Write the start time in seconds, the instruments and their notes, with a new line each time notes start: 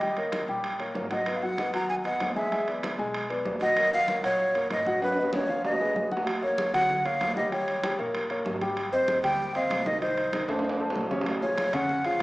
Already playing: upright bass D#2, flute D#5
0.01 grand piano G3 G4 G5, high conga, high timbale
0.17 grand piano A#3 A#4 C#5, high conga, high timbale
0.32 high conga, high timbale, low timbale
0.48 upright bass A#1, grand piano G3 G4 G5, high conga
0.64 high conga, high timbale
0.80 grand piano A#3 A#4 C#5, high conga, high timbale
0.95 upright bass G#1, grand piano A#3 A#4 C#5, high conga, low timbale
1.11 grand piano F#3 F#4 F#5, flute D#5, high conga, high timbale
1.26 grand piano B3 B4 D#5, high conga, high timbale
1.35 flute F5
1.42 grand piano F#3 F#4 F#5, flute F#5, high conga
1.58 grand piano B3 B4 D#5, high conga, high timbale, low timbale
1.73 upright bass D#2, grand piano F#3 F#4 F#5, flute A#5, high conga, high timbale
1.89 flute G#5, high conga
2.05 grand piano B3 B4 D#5, flute F#5, high conga, high timbale
2.20 upright bass E2, high conga, high timbale, low timbale
2.36 grand piano G#3 G#4 G#5, flute E5, high conga
2.52 grand piano G#3 G#4 G#5, high conga, high timbale
2.68 grand piano B3 B4 D5, high conga, high timbale
2.83 high conga, high timbale, low timbale
2.98 upright bass B1, grand piano G#3 G#4 G#5, high conga
3.14 high conga, high timbale
3.30 grand piano B3 B4 D5, high conga, high timbale
3.45 upright bass D#2, grand piano B3 B4 D5, high conga, low timbale
3.61 grand piano F#3 F#4 F#5, flute D#5, high conga, high timbale
3.77 grand piano A#3 A#4 C#5, high conga, high timbale
3.92 grand piano F#3 F#4 F#5, flute F5, high conga
4.08 grand piano A#3 A#4 C#5, high conga, high timbale, low timbale
4.23 upright bass A#1, grand piano F#3 F#4 F#5, flute C#5, high conga, high timbale
4.40 high conga
4.55 grand piano A#3 A#4 C#5, high conga, high timbale
4.70 upright bass G#1, flute D#5, high conga, high timbale, low timbale
4.86 grand piano F#3 F#4 F#5, high conga
5.02 grand piano F#3 F#4 F#5, flute B4, high conga, high timbale
5.13 high timbale
5.17 grand piano B3 B4 D#5, high conga
5.23 low timbale
5.33 flute C#5, high conga, high timbale
5.48 upright bass C#2, grand piano F3 F4 F5, high conga
5.64 flute D#5, high conga, low timbale
5.80 grand piano G#3 G#4 B4, high conga
5.85 low timbale
5.95 upright bass F#2, grand piano G#3 G#4 B4, high conga
6.11 grand piano F#3 F#4 F#5, high conga
6.17 low timbale
6.27 high conga, high timbale
6.42 grand piano A#3 A#4 C#5, flute C#5, high conga
6.58 high conga, high timbale, low timbale
6.73 upright bass C#2, grand piano F#3 F#4 F#5, flute F#5, high conga, low conga, high timbale
6.90 high conga, low conga
7.05 grand piano A#3 A#4 C#5, flute F5, high conga, high timbale
7.20 upright bass D#2, high conga, high timbale, low timbale
7.36 grand piano G3 G4 G5, flute D#5, high conga
7.51 grand piano G3 G4 G5, flute C#5, high conga, high timbale
7.68 high conga, high timbale
7.83 grand piano G3 G4 G5, high conga, high timbale, low timbale
7.98 upright bass A#1, grand piano A#3 A#4 C#5, high conga
8.15 high conga, high timbale
8.30 grand piano A#3 A#4 C#5, high conga, high timbale
8.45 upright bass G#1, high conga, low timbale
8.61 grand piano G3 G4 G5, high conga, high timbale
8.77 high conga, high timbale
8.93 grand piano C4 C5 D#5, flute C5, high conga
9.08 high conga, high timbale, low timbale
9.23 upright bass D#2, grand piano G3 G4 G5, flute G5, high conga, low conga, high timbale
9.40 high conga
9.55 grand piano C4 C5 D#5, flute F5, high conga, high timbale
9.70 upright bass C2, high conga, high timbale, low timbale
9.86 grand piano D#3 D#4 D#5, flute D#5, high conga
10.02 grand piano D#3 D#4 D#5, flute C5, high conga, high timbale
10.17 high conga, high timbale
10.33 grand piano D#3 D#4 D#5, high conga, high timbale, low timbale
10.48 upright bass F2, grand piano A3 A4 C5, high conga, high timbale
10.59 high timbale
10.65 high conga
10.69 high timbale
10.80 grand piano A3 A4 C5, high conga
10.90 low timbale
10.95 upright bass A#1, high conga
11.01 low timbale
11.11 grand piano C#3 C#4 C#5, high conga, low timbale
11.21 low timbale
11.26 high conga, high timbale
11.42 grand piano F3 F4 G#4, flute C#5, high conga
11.58 high conga, high timbale, low timbale
11.73 upright bass F2, grand piano C#3 C#4 C#5, flute F#5, high conga, low conga, high timbale
11.89 high conga, low conga
12.04 grand piano F3 F4 G#4, flute F5, high conga, high timbale